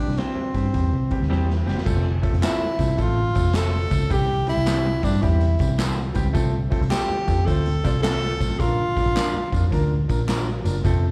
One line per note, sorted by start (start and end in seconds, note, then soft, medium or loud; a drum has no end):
0.00 0.20 D4 medium
0.08 0.17 C2 medium
0.08 snare soft
0.08 closed hi-hat soft
0.16 0.36 E3 medium
0.16 0.37 G3 medium
0.16 0.37 C4 medium
0.16 1.67 C4 medium
0.16 0.38 E4 medium
0.16 0.37 G4 medium
0.16 0.38 G4 medium
0.16 0.38 C5 medium
0.16 snare loud
0.16 closed hi-hat medium
0.36 muted picked electric bass stroke soft
0.53 0.71 G2 medium
0.53 0.64 E3 medium
0.53 0.64 G3 medium
0.53 0.65 C4 medium
0.53 0.65 G4 medium
0.53 kick medium
0.53 closed hi-hat medium
0.73 0.90 E2 medium
0.73 0.93 E3 medium
0.73 0.93 G3 medium
0.73 0.93 C4 medium
0.73 0.94 G4 medium
0.73 kick medium
0.73 closed hi-hat medium
0.92 1.08 C2 medium
1.10 1.21 E3 medium
1.10 1.21 G3 medium
1.10 1.21 C4 medium
1.10 1.21 G4 medium
1.10 kick medium
1.10 closed hi-hat medium
1.20 1.29 D2 medium
1.20 snare soft
1.29 1.62 E2 medium
1.29 1.49 E3 loud
1.29 1.49 G3 loud
1.29 1.49 C4 medium
1.29 1.49 E4 medium
1.29 1.50 G4 medium
1.29 1.50 G4 loud
1.29 1.50 C5 medium
1.29 snare medium
1.50 snare medium
1.66 1.75 F#1 medium
1.66 1.76 E3 loud
1.66 1.76 G3 loud
1.66 1.77 C4 loud
1.66 1.77 G4 loud
1.66 snare medium
1.77 snare medium
1.84 2.27 F1 loud
1.84 2.04 F3 loud
1.84 2.05 A3 medium
1.84 2.05 C4 loud
1.84 2.05 A4 loud
1.84 kick loud
1.84 crash medium
1.84 tambourine medium
2.21 2.32 F3 medium
2.21 2.33 A3 medium
2.21 2.33 C4 medium
2.21 2.33 A4 loud
2.21 kick loud
2.21 closed hi-hat medium
2.33 2.41 F1 medium
2.33 closed hi-hat soft
2.41 2.61 F3 medium
2.41 2.61 A3 medium
2.41 2.61 C4 medium
2.41 3.03 E4 medium
2.41 2.61 F4 medium
2.41 2.62 A4 medium
2.41 2.62 C5 medium
2.41 snare loud
2.41 clap loud
2.41 closed hi-hat loud
2.41 tambourine loud
2.61 muted picked electric bass stroke soft
2.78 2.96 C2 medium
2.78 2.89 F3 medium
2.78 2.89 A3 medium
2.78 2.89 C4 medium
2.78 2.90 A4 medium
2.78 kick medium
2.78 closed hi-hat medium
2.78 tambourine soft
2.96 3.31 A1 medium
2.96 3.17 F3 medium
2.96 3.17 A3 medium
2.96 3.17 C4 medium
2.96 3.17 A4 loud
2.96 kick medium
2.96 closed hi-hat medium
2.96 tambourine soft
3.01 3.57 F4 medium
3.34 3.84 F1 medium
3.34 3.44 F3 medium
3.34 3.45 A3 medium
3.34 3.45 C4 medium
3.34 3.45 A4 medium
3.34 kick medium
3.34 closed hi-hat medium
3.34 tambourine medium
3.45 snare soft
3.53 3.73 F3 medium
3.53 3.73 A3 medium
3.53 3.73 C4 medium
3.53 3.74 C4 medium
3.53 3.74 F4 medium
3.53 3.74 A4 loud
3.53 3.74 A4 medium
3.53 4.14 A4 loud
3.53 3.74 C5 medium
3.53 snare loud
3.53 clap medium
3.53 closed hi-hat medium
3.53 tambourine medium
3.90 4.08 C#2 medium
3.90 4.00 F3 medium
3.90 4.01 A3 medium
3.90 4.01 C4 medium
3.90 4.01 A4 medium
3.90 kick medium
3.90 closed hi-hat medium
3.90 tambourine medium
4.09 4.51 C2 loud
4.09 4.29 E3 medium
4.09 4.29 G3 medium
4.09 4.29 C4 medium
4.09 4.30 G4 loud
4.09 4.49 G4 loud
4.09 kick loud
4.09 closed hi-hat medium
4.09 tambourine medium
4.46 4.57 E3 medium
4.46 4.57 G3 medium
4.46 4.57 C4 medium
4.46 5.05 E4 loud
4.46 4.58 G4 medium
4.46 closed hi-hat medium
4.46 tambourine soft
4.57 4.97 C2 loud
4.57 closed hi-hat soft
4.65 4.85 E3 medium
4.65 4.85 G3 medium
4.65 4.86 C4 medium
4.65 4.86 E4 loud
4.65 4.86 G4 medium
4.65 4.86 G4 loud
4.65 4.86 C5 medium
4.65 snare loud
4.65 clap loud
4.65 closed hi-hat medium
4.65 tambourine loud
5.03 5.20 G2 medium
5.03 5.13 E3 medium
5.03 5.13 G3 medium
5.03 5.13 C4 medium
5.03 5.24 D4 medium
5.03 5.14 G4 medium
5.03 kick medium
5.03 closed hi-hat medium
5.03 tambourine medium
5.22 5.55 E2 medium
5.22 5.41 E3 medium
5.22 5.42 G3 medium
5.22 5.42 C4 medium
5.22 5.78 E4 medium
5.22 5.42 G4 loud
5.22 kick medium
5.22 closed hi-hat medium
5.22 tambourine soft
5.41 closed hi-hat medium
5.59 6.08 C2 medium
5.59 5.69 E3 medium
5.59 5.69 G3 medium
5.59 5.70 C4 medium
5.59 5.70 G4 medium
5.59 kick loud
5.59 closed hi-hat medium
5.59 tambourine medium
5.78 5.97 E3 medium
5.78 5.98 G3 medium
5.78 5.98 C4 medium
5.78 5.98 E4 medium
5.78 5.98 G4 medium
5.78 5.98 A4 medium
5.78 5.98 C5 loud
5.78 snare loud
5.78 clap loud
5.78 closed hi-hat medium
5.78 tambourine loud
6.14 6.32 C#2 medium
6.14 6.25 E3 medium
6.14 6.25 G3 medium
6.14 6.26 C4 medium
6.14 6.26 G4 loud
6.14 kick medium
6.14 closed hi-hat medium
6.14 tambourine medium
6.33 6.75 C2 loud
6.33 6.53 F3 loud
6.33 6.53 A3 loud
6.33 6.54 C4 loud
6.33 6.54 A4 loud
6.33 kick loud
6.33 closed hi-hat medium
6.33 tambourine medium
6.70 6.81 F3 loud
6.70 6.81 A3 medium
6.70 6.81 C4 medium
6.70 6.82 A4 loud
6.70 kick medium
6.70 closed hi-hat medium
6.81 6.90 C2 medium
6.81 closed hi-hat soft
6.90 7.10 F3 medium
6.90 7.10 A3 medium
6.90 7.10 C4 medium
6.90 7.10 F4 medium
6.90 7.47 G4 medium
6.90 7.10 A4 loud
6.90 7.11 A4 medium
6.90 7.10 C5 loud
6.90 snare loud
6.90 clap loud
6.90 closed hi-hat medium
6.90 tambourine loud
7.10 muted picked electric bass stroke soft
7.26 7.44 F2 medium
7.26 7.37 F3 medium
7.26 7.37 A3 medium
7.26 7.38 C4 medium
7.26 7.38 A4 medium
7.26 kick medium
7.26 closed hi-hat medium
7.26 tambourine soft
7.46 7.79 D2 medium
7.46 7.66 F3 medium
7.46 7.66 A3 medium
7.46 7.66 C4 medium
7.46 8.02 A4 medium
7.46 7.67 C5 medium
7.46 kick medium
7.46 closed hi-hat medium
7.46 tambourine soft
7.66 closed hi-hat medium
7.83 8.33 C2 medium
7.83 7.93 F3 medium
7.83 7.94 A3 medium
7.83 7.94 C4 medium
7.83 7.94 F4 medium
7.83 7.94 C5 medium
7.83 7.93 D5 medium
7.83 kick medium
7.83 closed hi-hat medium
7.83 tambourine medium
7.94 8.03 E4 medium
7.94 8.03 C5 medium
8.02 8.22 F3 medium
8.02 8.22 A3 medium
8.02 8.22 C4 medium
8.02 8.21 C4 medium
8.02 8.22 F4 medium
8.02 8.61 A4 loud
8.02 8.21 A4 medium
8.02 8.23 A4 medium
8.02 8.23 C5 loud
8.02 snare loud
8.02 clap loud
8.02 closed hi-hat medium
8.02 tambourine loud
8.22 8.58 A3 medium
8.22 8.58 F4 medium
8.39 8.57 B1 medium
8.39 8.49 F3 medium
8.39 8.50 A3 medium
8.39 8.50 C4 medium
8.39 8.50 A4 medium
8.39 kick medium
8.39 closed hi-hat medium
8.39 tambourine medium
8.58 9.00 A#1 loud
8.58 8.78 F3 loud
8.58 8.78 A#3 medium
8.58 8.79 D4 medium
8.58 9.72 F4 loud
8.58 8.79 A#4 loud
8.58 kick loud
8.58 closed hi-hat medium
8.58 tambourine medium
8.95 9.06 F3 medium
8.95 9.06 A#3 medium
8.95 9.07 D4 medium
8.95 9.07 A#4 medium
8.95 kick medium
8.95 closed hi-hat medium
8.95 tambourine soft
9.06 9.14 A#1 medium
9.06 closed hi-hat soft
9.15 9.34 F3 medium
9.15 9.35 A#3 medium
9.15 9.35 D4 medium
9.15 9.35 F4 medium
9.15 9.35 A#4 loud
9.15 9.35 A#4 medium
9.15 9.35 D5 loud
9.15 snare loud
9.15 clap loud
9.15 closed hi-hat medium
9.15 tambourine loud
9.34 muted picked electric bass stroke soft
9.52 9.69 F2 medium
9.52 9.62 F3 medium
9.52 9.63 A#3 medium
9.52 9.63 D4 medium
9.52 9.63 F4 loud
9.52 kick medium
9.52 closed hi-hat medium
9.52 tambourine soft
9.71 10.04 D2 medium
9.71 9.90 F3 loud
9.71 9.91 A#3 loud
9.71 9.91 D4 medium
9.71 9.91 A#4 loud
9.71 kick medium
9.71 closed hi-hat medium
9.71 tambourine soft
10.08 10.58 A#1 medium
10.08 10.18 F3 medium
10.08 10.19 A#3 medium
10.08 10.19 D4 medium
10.08 10.19 A#4 medium
10.08 kick medium
10.08 closed hi-hat medium
10.08 tambourine medium
10.27 10.47 F3 medium
10.27 10.47 A#3 medium
10.27 10.47 D4 medium
10.27 10.47 F4 medium
10.27 10.47 A#4 medium
10.27 10.48 A#4 loud
10.27 10.48 D5 medium
10.27 snare loud
10.27 clap medium
10.27 closed hi-hat medium
10.27 tambourine medium
10.64 10.81 F#1 medium
10.64 10.74 F3 medium
10.64 10.75 A#3 medium
10.64 10.75 D4 medium
10.64 10.75 A#4 medium
10.64 closed hi-hat medium
10.64 tambourine medium
10.84 11.12 F1 loud
10.84 11.03 F3 loud
10.84 11.04 A3 medium
10.84 11.04 C4 loud
10.84 11.04 A4 loud
10.84 kick loud
10.84 closed hi-hat medium
10.84 tambourine medium